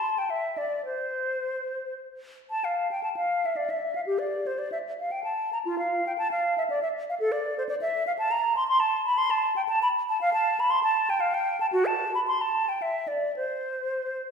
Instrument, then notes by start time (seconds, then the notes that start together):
flute
Already playing: A5
0.18 G5
0.30 E5
0.58 D5
0.85 C5
2.51 A5
2.64 F5
2.91 G5
3.03 A5
3.16 F5
3.46 E5
3.57 D5
3.70 E5
3.95 F5
4.07 G4
4.19 D5
4.47 C5
4.59 D5
4.72 E5
5.00 F5
5.11 G5
5.24 A5
5.53 A#5
5.65 F4
5.79 F5
6.07 G5
6.18 A5
6.31 F5
6.58 E5
6.70 D5
6.82 E5
7.10 F5
7.20 A4
7.32 D5
7.58 C5
7.69 D5
7.81 E5
8.07 F5
8.19 A5
8.31 A#5
8.57 C6
8.68 C6
8.80 A5
9.06 B5
9.18 C6
9.30 A5
9.56 G5
9.69 A5
9.82 B5
10.09 A5
10.21 F5
10.33 A5
10.60 B5
10.70 C6
10.83 A5
11.10 G5
11.20 F5
11.34 G5
11.61 A5
11.73 F#4
11.86 A5
12.15 B5
12.27 C6
12.41 A5
12.69 G5
12.82 E5
13.08 D5
13.36 C5